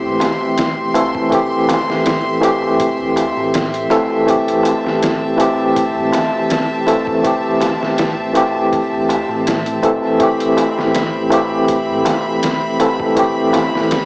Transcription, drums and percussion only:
0.20 snare soft
0.20 closed hi-hat medium
0.20 darbuka tek loud
0.41 darbuka tek soft
0.58 snare loud
0.58 closed hi-hat medium
0.58 darbuka tek soft
0.94 closed hi-hat medium
0.94 darbuka tek loud
1.14 kick medium
1.14 darbuka tek soft
1.32 kick loud
1.32 closed hi-hat medium
1.32 darbuka tek soft
1.69 snare soft
1.69 closed hi-hat medium
1.69 darbuka tek loud
1.88 snare soft
1.88 darbuka tek soft
2.04 snare loud
2.04 closed hi-hat medium
2.04 darbuka tek soft
2.42 closed hi-hat medium
2.42 darbuka tek medium
2.62 darbuka tek soft
2.80 kick loud
2.80 closed hi-hat medium
2.80 darbuka tek soft
3.16 closed hi-hat medium
3.16 darbuka tek medium
3.37 darbuka tek medium
3.54 snare loud
3.54 closed hi-hat medium
3.54 darbuka tek soft
3.74 closed hi-hat soft
3.90 kick medium
3.90 closed hi-hat medium
3.90 darbuka tek medium
4.10 darbuka tek medium
4.27 kick loud
4.27 closed hi-hat medium
4.27 darbuka tek soft
4.48 closed hi-hat soft
4.63 closed hi-hat medium
4.63 darbuka tek medium
4.85 snare soft
4.85 darbuka tek soft
5.02 snare loud
5.02 closed hi-hat medium
5.02 darbuka tek soft
5.38 closed hi-hat medium
5.38 darbuka tek medium
5.58 darbuka tek soft
5.75 kick loud
5.75 closed hi-hat medium
5.75 darbuka tek soft
6.13 snare medium
6.13 closed hi-hat medium
6.13 darbuka tek medium
6.33 darbuka tek soft
6.49 snare loud
6.49 closed hi-hat medium
6.49 darbuka tek soft
6.87 closed hi-hat medium
6.87 darbuka tek medium
7.07 kick medium
7.07 darbuka tek soft
7.24 kick loud
7.24 closed hi-hat medium
7.24 darbuka tek soft
7.60 snare soft
7.60 closed hi-hat medium
7.60 darbuka tek medium
7.81 snare soft
7.81 darbuka tek soft
7.97 snare loud
7.97 closed hi-hat medium
7.97 darbuka tek soft
8.35 closed hi-hat medium
8.35 darbuka tek medium
8.54 darbuka tek soft
8.72 kick loud
8.72 closed hi-hat medium
8.72 darbuka tek soft
9.09 closed hi-hat medium
9.09 darbuka tek medium
9.29 darbuka tek soft
9.46 snare loud
9.46 closed hi-hat medium
9.46 darbuka tek soft
9.66 closed hi-hat soft
9.83 kick loud
9.83 closed hi-hat medium
9.83 darbuka tek medium
10.03 darbuka tek medium
10.20 kick loud
10.20 closed hi-hat medium
10.20 darbuka tek soft
10.40 closed hi-hat soft
10.57 closed hi-hat medium
10.57 darbuka tek medium
10.77 snare soft
10.77 darbuka tek medium
10.94 snare loud
10.94 closed hi-hat medium
10.94 darbuka tek soft
11.30 closed hi-hat medium
11.30 darbuka tek medium
11.51 darbuka tek soft
11.68 kick loud
11.68 closed hi-hat medium
11.68 darbuka tek soft
12.05 snare soft
12.05 closed hi-hat medium
12.05 darbuka tek medium
12.26 darbuka tek soft
12.43 snare loud
12.43 closed hi-hat medium
12.43 darbuka tek soft
12.80 closed hi-hat medium
12.80 darbuka tek medium
13.00 kick medium
13.00 darbuka tek soft
13.17 kick loud
13.17 closed hi-hat medium
13.17 darbuka tek soft
13.53 snare soft
13.53 closed hi-hat medium
13.53 darbuka tek medium
13.74 snare soft
13.74 darbuka tek soft
13.91 snare loud
13.91 closed hi-hat medium
13.91 darbuka tek soft

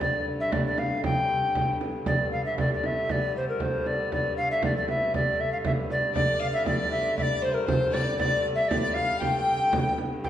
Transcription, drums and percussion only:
0.01 frame drum medium
0.27 frame drum soft
0.52 frame drum medium
0.78 frame drum medium
1.04 frame drum medium
1.30 frame drum soft
1.55 frame drum medium
1.81 frame drum medium
2.06 frame drum medium
2.33 frame drum soft
2.58 frame drum medium
2.84 frame drum medium
3.09 frame drum medium
3.35 frame drum soft
3.60 frame drum medium
3.86 frame drum medium
4.12 frame drum medium
4.38 frame drum soft
4.62 frame drum medium
4.88 frame drum medium
5.14 frame drum medium
5.65 frame drum medium
5.90 frame drum medium
6.16 frame drum medium
6.41 frame drum soft
6.66 frame drum medium
6.92 frame drum medium
7.18 frame drum medium
7.43 frame drum soft
7.68 frame drum medium
7.94 frame drum medium
8.19 frame drum medium
8.46 frame drum soft
8.71 frame drum medium
8.96 frame drum medium
9.22 frame drum medium
9.73 frame drum medium
9.98 frame drum medium
10.25 frame drum medium

